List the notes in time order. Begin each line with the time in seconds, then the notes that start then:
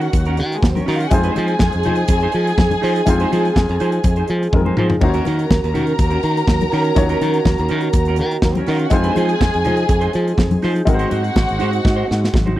Already playing: D#3 A#3 C#4 D#4 F#4 A#4 F#5
0.01 muted clean electric guitar stroke, closed hi-hat
0.13 D#2, muted clean electric guitar stroke, kick, closed hi-hat, muted conga
0.25 C#4 F#4 A#4, closed hi-hat
0.37 D#3, muted clean electric guitar stroke, closed hi-hat
0.52 G#3 G#4, muted clean electric guitar stroke, closed hi-hat
0.62 D#2 A#3 A#4, muted clean electric guitar stroke, kick, snare, high conga
0.70 C4 C5
0.75 C#4 F#4 A#4, closed hi-hat, high conga
0.80 C#4 C#5
0.86 D#3 C#4 D#4 F#4 A#4 D#5, open hi-hat
0.94 F4 F5
1.00 F#4 F#5, muted clean electric guitar stroke, closed hi-hat
1.10 F2 F3 G#3 C4 D#4 F4 G#4 C5 G#5, muted clean electric guitar stroke, kick, closed hi-hat, muted conga
1.23 D#4 G#4 C5, closed hi-hat
1.36 F3 D#4 G#4 C5, closed hi-hat, muted conga
1.48 muted clean electric guitar stroke, closed hi-hat
1.59 F2, kick, snare, high conga
1.72 F2, muted clean electric guitar stroke, closed hi-hat
1.83 F3 D#4 G#4 C5, closed hi-hat, low conga
1.95 muted clean electric guitar stroke, closed hi-hat
2.08 F2, muted clean electric guitar stroke, kick, closed hi-hat
2.20 G#4 C5, closed hi-hat
2.24 D#4
2.32 F3, muted clean electric guitar stroke, closed hi-hat
2.46 muted clean electric guitar stroke, closed hi-hat
2.58 F2, muted clean electric guitar stroke, kick, snare, high conga
2.70 muted clean electric guitar stroke, closed hi-hat, high conga
2.82 F3 D#4 G#4 C5, snare, open hi-hat
2.95 muted clean electric guitar stroke, closed hi-hat
3.05 F2 G#3 C4 D#4 F4 C5, muted clean electric guitar stroke, kick, closed hi-hat, muted conga
3.20 D#4 G#4 C5, closed hi-hat
3.31 F3 D#4 G#4 C5, closed hi-hat, muted conga
3.45 muted clean electric guitar stroke, closed hi-hat
3.56 F2, kick, snare, high conga
3.69 F2, muted clean electric guitar stroke, closed hi-hat
3.80 F3 D#4 G#4 C5, closed hi-hat
3.92 muted clean electric guitar stroke, closed hi-hat
4.04 F2, muted clean electric guitar stroke, kick, closed hi-hat, muted conga
4.16 D#4 G#4 C5, closed hi-hat
4.28 F3, muted clean electric guitar stroke, closed hi-hat
4.41 muted clean electric guitar stroke, closed hi-hat
4.53 F2 G#3 C4 D#4 F4 A#4, muted clean electric guitar stroke, kick, high tom, high conga
4.65 D#4 G#4 C5, high conga
4.77 F3 D#4 G#4 C5, mid tom
4.90 muted clean electric guitar stroke, floor tom
5.01 D#2 D#3 A#3 C#4 D#4 F#4 A#4 C5 A#5, muted clean electric guitar stroke, kick, crash, muted conga
5.09 C#5
5.14 C#4 F#4 A#4, closed hi-hat
5.25 D#3 C#4 F#4 A#4, closed hi-hat, muted conga
5.39 muted clean electric guitar stroke, closed hi-hat
5.51 D#2, kick, snare, high conga
5.63 D#2, muted clean electric guitar stroke, closed hi-hat
5.74 D#3 C#4 F#4 A#4, closed hi-hat, low conga
5.87 muted clean electric guitar stroke, closed hi-hat
5.99 D#2, muted clean electric guitar stroke, kick, closed hi-hat
6.10 C#4 F#4 A#4, closed hi-hat
6.23 D#3, muted clean electric guitar stroke, closed hi-hat
6.36 muted clean electric guitar stroke, closed hi-hat
6.47 D#2, muted clean electric guitar stroke, kick, snare, high conga
6.60 muted clean electric guitar stroke, closed hi-hat, high conga
6.72 D#3 C#4 F#4 A#4, snare, open hi-hat
6.84 muted clean electric guitar stroke, closed hi-hat
6.95 D#2 A#3 C#4 D#4 F4 C#5, muted clean electric guitar stroke, kick, closed hi-hat, muted conga
7.03 F#4
7.09 C#4 F#4 A#4, closed hi-hat
7.21 D#3 C#4 F#4 A#4, closed hi-hat, muted conga
7.33 muted clean electric guitar stroke, closed hi-hat
7.45 D#2, kick, snare, high conga
7.58 D#2, muted clean electric guitar stroke, closed hi-hat
7.68 D#3 C#4 F#4 A#4, closed hi-hat
7.81 muted clean electric guitar stroke, closed hi-hat
7.93 D#2, muted clean electric guitar stroke, kick, closed hi-hat, muted conga
8.05 F#4 A#4, closed hi-hat
8.09 C#4
8.16 D#3, muted clean electric guitar stroke, closed hi-hat
8.31 muted clean electric guitar stroke, closed hi-hat
8.42 D#2 A#3 A#4, muted clean electric guitar stroke, kick, snare, high conga
8.52 C4 C5, closed hi-hat, high conga
8.57 C#4 F#4 A#4 C#5
8.66 D#3 C#4 D#4 F#4 A#4 D#5, snare, open hi-hat
8.76 F4 F5, closed hi-hat
8.81 F#4 F#5, muted clean electric guitar stroke
8.90 F2 F3 G#3 C4 D#4 F4 G#4 C5 G#5, muted clean electric guitar stroke, kick, closed hi-hat, muted conga
9.03 D#4 G#4 C5, closed hi-hat
9.16 F3 D#4 G#4 C5, closed hi-hat, muted conga
9.29 muted clean electric guitar stroke, closed hi-hat
9.41 F2, kick, snare, high conga
9.54 F2, muted clean electric guitar stroke, closed hi-hat
9.65 F3 D#4 G#4 C5, closed hi-hat, low conga
9.77 muted clean electric guitar stroke, closed hi-hat
9.89 F2, muted clean electric guitar stroke, kick, closed hi-hat
10.01 D#4 G#4 C5, closed hi-hat
10.13 F3, muted clean electric guitar stroke, closed hi-hat
10.26 muted clean electric guitar stroke, closed hi-hat
10.37 F2, muted clean electric guitar stroke, kick, snare, high conga
10.50 muted clean electric guitar stroke, closed hi-hat, high conga
10.62 F3 D#4 G#4 C5, snare, open hi-hat
10.76 muted clean electric guitar stroke, closed hi-hat
10.85 G#1 G#3 C4 D#4 F#4 A#4 F#5, muted clean electric guitar stroke, kick, closed hi-hat, muted conga
10.94 C5
10.99 D#4 F#4 C5, closed hi-hat
11.09 G#2 D#4 F#4 C5, closed hi-hat, muted conga
11.24 muted clean electric guitar stroke, closed hi-hat
11.36 G#1, kick, snare, high conga
11.48 G#1, muted clean electric guitar stroke, closed hi-hat
11.59 G#2 D#4 F#4 C5, closed hi-hat
11.72 muted clean electric guitar stroke, closed hi-hat
11.84 G#2, muted clean electric guitar stroke, kick, snare
11.96 D#4 F#4 C5
12.07 G#2, muted clean electric guitar stroke, snare
12.21 muted clean electric guitar stroke, snare
12.33 G#1, muted clean electric guitar stroke, kick, snare, high conga
12.46 D#4 F#4 C5, high conga
12.56 D#4